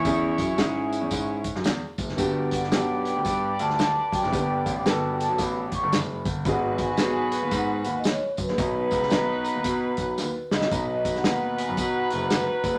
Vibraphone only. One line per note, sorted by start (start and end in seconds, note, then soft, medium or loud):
0.06 1.08 E5 medium
2.54 3.08 F#5 medium
3.08 3.62 G5 medium
3.61 4.15 A5 medium
4.14 5.23 G5 medium
5.22 5.39 A5 medium
5.42 5.75 B5 loud
5.75 5.94 C#6 loud
5.96 6.35 B5 medium
6.49 6.82 F#5 medium
6.83 6.86 G#5 medium
6.93 7.56 G#5 medium
7.54 7.98 F#5 medium
7.99 8.08 D#5 medium
8.06 8.21 C#5 medium
8.41 10.49 B4 medium
10.53 11.17 D#5 medium
11.17 11.56 F#5 loud
11.60 11.79 G#5 medium
11.81 12.34 F#5 medium
12.33 12.79 B4 medium